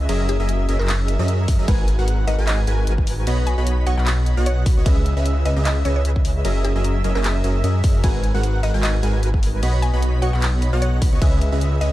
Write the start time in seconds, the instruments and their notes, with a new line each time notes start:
0.09 detuned saw bass F#1, supersaw synth F#3 C#4 G#4 A#4 D#5 E5, digital synth lead E5, closed hi-hat, crash
0.29 synth pluck G#4, closed hi-hat
0.40 detuned saw bass F#1, supersaw synth F#3 C#4 G#4 A#4 D#5 E5, digital synth lead E5
0.49 closed hi-hat
0.69 detuned saw bass F#1, supersaw synth F#3 C#4 G#4 A#4 D#5 E5, digital synth lead E5, closed hi-hat
0.79 detuned saw bass F#1, supersaw synth F#3 C#4 G#4 A#4 D#5 E5, synth pluck A#4, digital synth lead E5, clap
0.88 clap, closed hi-hat, crash
1.08 closed hi-hat
1.19 detuned saw bass F#2, supersaw synth F#3 C#4 G#4 A#4 D#5 E5, digital synth lead E5
1.28 closed hi-hat
1.48 detuned saw bass F#2, supersaw synth F#3 C#4 D#5 E5, digital synth lead E5, kick, open hi-hat
1.59 detuned saw bass F#1, supersaw synth F#3 C#4 G#4 A#4 D#5 E5, digital synth lead E5
1.68 detuned saw bass G#1, supersaw synth G#3 F#4 A#4 B4 G#5, digital synth lead G#5, kick, closed hi-hat, crash
1.88 closed hi-hat
1.99 detuned saw bass G#1, supersaw synth G#3 F#4 A#4 B4 F#5, digital synth lead F#5
2.08 closed hi-hat
2.27 detuned saw bass G#1, supersaw synth G#3 F#4 A#4 B4 F#5, synth pluck D#5, digital synth lead F#5, closed hi-hat
2.38 detuned saw bass G#1, supersaw synth G#3 F#4 A#4 B4 G#5, digital synth lead G#5
2.47 synth pluck D#5, clap, closed hi-hat, crash
2.67 detuned saw bass G#1, supersaw synth G#3 F#4 A#4 B4 G#5, digital synth lead G#5, closed hi-hat
2.87 detuned saw bass G#1, supersaw synth G#3 F#4 A#4 B4 G#5, digital synth lead G#5, closed hi-hat
2.98 kick
3.07 open hi-hat
3.27 detuned saw bass B1, supersaw synth B3 F#4 C#5 D#5 B5, digital synth lead B5, closed hi-hat, crash
3.47 synth pluck G#5, closed hi-hat
3.58 detuned saw bass B1, supersaw synth B3 F#4 C#5 D#5 B5, digital synth lead B5
3.67 closed hi-hat
3.86 detuned saw bass B1, supersaw synth B3 F#4 C#5 D#5 C#6, synth pluck F#5, digital synth lead C#6, closed hi-hat
3.97 detuned saw bass B1, supersaw synth B3 F#4 C#5 D#5 B5, synth pluck F#5, digital synth lead B5, clap
4.07 clap, closed hi-hat, crash
4.26 closed hi-hat
4.37 detuned saw bass B1, supersaw synth B3 F#4 C#5 D#5 F#5, digital synth lead F#5
4.46 synth pluck C#5, closed hi-hat
4.66 detuned saw bass B1, supersaw synth B3 F#4 C#5 D#5 B5, digital synth lead B5, kick, open hi-hat
4.77 detuned saw bass C#2, supersaw synth B3 F#4 C#5 D#5 C#6, digital synth lead C#6
4.86 detuned saw bass C#2, supersaw synth C#4 G#4 B4 D#5 E5, digital synth lead E5, kick, closed hi-hat, crash
5.06 closed hi-hat
5.17 detuned saw bass C#2, supersaw synth C#4 G#4 B4 D#5 E5, digital synth lead E5
5.26 closed hi-hat
5.45 detuned saw bass C#2, supersaw synth C#4 G#4 B4 D#5 E5, synth pluck D#5, digital synth lead E5, closed hi-hat
5.56 detuned saw bass C#2, supersaw synth C#4 G#4 B4 D#5 E5, digital synth lead E5
5.65 synth pluck D#5, clap, closed hi-hat, crash
5.85 detuned saw bass C#2, supersaw synth C#4 G#4 B4 D#5 E5, synth pluck C#5, digital synth lead E5, closed hi-hat
5.96 synth pluck C#5
6.05 detuned saw bass C#2, supersaw synth C#4 G#4 B4 D#5 E5, digital synth lead E5, closed hi-hat
6.16 kick
6.25 open hi-hat
6.45 detuned saw bass F#1, supersaw synth F#3 C#4 G#4 A#4 D#5 E5, digital synth lead E5, closed hi-hat, crash
6.64 synth pluck G#4, closed hi-hat
6.75 detuned saw bass F#1, supersaw synth F#3 C#4 G#4 A#4 D#5 E5, digital synth lead E5
6.84 closed hi-hat
7.04 detuned saw bass F#1, supersaw synth F#3 C#4 G#4 A#4 D#5 E5, digital synth lead E5, closed hi-hat
7.15 detuned saw bass F#1, supersaw synth F#3 C#4 G#4 A#4 D#5 E5, synth pluck A#4, digital synth lead E5, clap
7.24 clap, closed hi-hat, crash
7.44 detuned saw bass F#1, supersaw synth F#3 C#4 G#4 A#4 D#5 E5, digital synth lead E5, closed hi-hat
7.64 detuned saw bass F#2, supersaw synth F#3 C#4 G#4 A#4 D#5 E5, digital synth lead E5, closed hi-hat
7.84 detuned saw bass F#2, supersaw synth F#3 C#4 G#4 A#4 D#5 E5, digital synth lead E5, kick, open hi-hat
8.04 detuned saw bass G#1, supersaw synth G#3 F#4 A#4 B4 G#5, digital synth lead G#5, kick, closed hi-hat, crash
8.24 closed hi-hat
8.34 detuned saw bass G#1, supersaw synth G#3 F#4 A#4 B4 F#5, digital synth lead F#5
8.43 closed hi-hat
8.63 detuned saw bass G#1, supersaw synth G#3 F#4 A#4 B4 F#5, synth pluck D#5, digital synth lead F#5, closed hi-hat
8.74 detuned saw bass G#1, supersaw synth G#3 F#4 A#4 B4 G#5, digital synth lead G#5
8.83 synth pluck D#5, clap, closed hi-hat, crash
9.03 detuned saw bass G#1, supersaw synth G#3 F#4 A#4 B4 G#5, digital synth lead G#5, closed hi-hat
9.23 detuned saw bass G#1, supersaw synth G#3 F#4 A#4 B4 G#5, digital synth lead G#5, closed hi-hat
9.34 kick
9.43 open hi-hat
9.63 detuned saw bass B1, supersaw synth B3 F#4 C#5 D#5 B5, digital synth lead B5, closed hi-hat, crash
9.82 synth pluck G#5, closed hi-hat
9.93 detuned saw bass B1, supersaw synth B3 F#4 C#5 D#5 B5, digital synth lead B5
10.02 closed hi-hat
10.22 detuned saw bass B1, supersaw synth B3 F#4 C#5 D#5 C#6, synth pluck F#5, digital synth lead C#6, closed hi-hat
10.33 detuned saw bass B1, supersaw synth B3 F#4 C#5 D#5 B5, synth pluck F#5, digital synth lead B5, clap
10.42 clap, closed hi-hat, crash
10.62 closed hi-hat
10.73 detuned saw bass B1, supersaw synth B3 F#4 C#5 D#5 F#5, digital synth lead F#5
10.82 synth pluck C#5, closed hi-hat
11.02 detuned saw bass B1, supersaw synth B3 F#4 C#5 D#5 B5, digital synth lead B5, kick, open hi-hat
11.13 detuned saw bass C#2, supersaw synth B3 F#4 C#5 D#5 C#6, digital synth lead C#6
11.22 detuned saw bass C#2, supersaw synth C#4 G#4 B4 D#5 E5, digital synth lead E5, kick, closed hi-hat, crash
11.41 closed hi-hat
11.52 detuned saw bass C#2, supersaw synth C#4 G#4 B4 D#5 E5, digital synth lead E5
11.61 closed hi-hat
11.81 detuned saw bass C#2, supersaw synth C#4 G#4 B4 D#5 E5, synth pluck D#5, digital synth lead E5, closed hi-hat